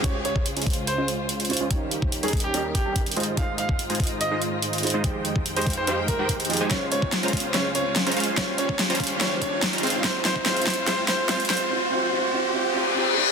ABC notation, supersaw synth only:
X:1
M:4/4
L:1/16
Q:1/4=144
K:Dblyd
V:1 name="Supersaw synth"
[DFcf]4- [DFcf] [A,DFcb] [Ff]3 [A,DFcf]6 [A,DFcf] | G,4- G, [G,DEBd] [G,DEBe]2 [G,DEBe]3 [G,DEBg]3 [A,EFce]2 | [A,EFe]4- [A,EFe] [A,EFca] [A,EFce]3 [A,EFce]6 [A,EFce] | c4- c [A,EGce] [Gcf]2 [A,EGcf]3 [A,EGcg]4 [A,EGca] |
[Ff]4- [Ff] [A,DFcb] [A,cf]2 [A,DFcf]4- [A,DFcf] [A,DFcb] [A,DFcf]2 | [G,DFcf]4- [G,DFcf] [G,DFcb] [G,DFcf]2 [G,DFcf]4- [G,DFcf] [G,DFcb] [A,CFcf]2 | [A,CFcf]4 [A,CFcf]4 [A,CFcf]4 [A,CFcf]4 | z16 |]